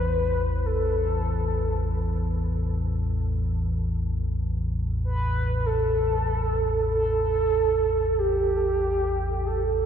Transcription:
0.00 9.86 A1 medium
0.00 9.86 E2 medium
0.00 0.67 B4 loud
0.66 2.54 A4 medium
5.05 5.67 B4 loud
5.66 6.92 A4 loud
6.92 8.20 A4 loud
8.18 9.48 G4 loud
9.46 9.86 A4 loud

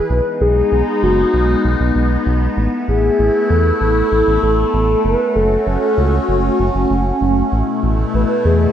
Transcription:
0.00 0.12 G#4 loud
0.10 0.21 B1 loud
0.10 2.55 G#3 medium
0.10 5.01 B3 medium
0.10 2.55 D#4 medium
0.10 0.41 B4 loud
0.41 0.63 B1 medium
0.41 1.04 G#4 loud
0.72 0.83 B1 medium
1.03 1.25 F#1 loud
1.03 1.65 F#4 medium
1.34 1.55 B1 medium
1.65 1.76 B1 medium
1.80 1.91 B1 medium
1.95 2.17 B1 medium
2.26 2.48 B1 medium
2.57 2.68 A1 loud
2.57 7.48 A3 medium
2.57 5.02 E4 medium
2.88 3.10 A1 medium
2.88 3.51 G#4 loud
3.19 3.30 A1 medium
3.50 3.72 E2 loud
3.50 4.42 A4 loud
3.81 4.03 A1 medium
4.12 4.23 A1 medium
4.27 4.38 A1 medium
4.43 4.65 A1 medium
4.43 5.06 A4 loud
4.74 4.96 A1 medium
5.05 5.16 F#1 loud
5.05 7.50 C#4 medium
5.05 7.50 F#4 medium
5.05 5.37 B4 loud
5.35 5.57 F#1 medium
5.35 6.59 A4 loud
5.67 5.77 F#1 medium
5.98 6.19 C#2 loud
6.29 6.50 F#1 loud
6.59 6.70 F#1 loud
6.75 6.86 F#1 medium
6.90 7.12 F#1 loud
7.21 7.43 F#1 medium
7.52 7.63 A1 loud
7.52 8.72 B2 medium
7.52 8.72 A3 medium
7.52 8.72 E4 medium
7.83 8.05 A1 medium
8.14 8.25 A1 medium
8.14 8.47 B4 loud
8.45 8.67 E2 loud
8.45 8.72 G#4 medium

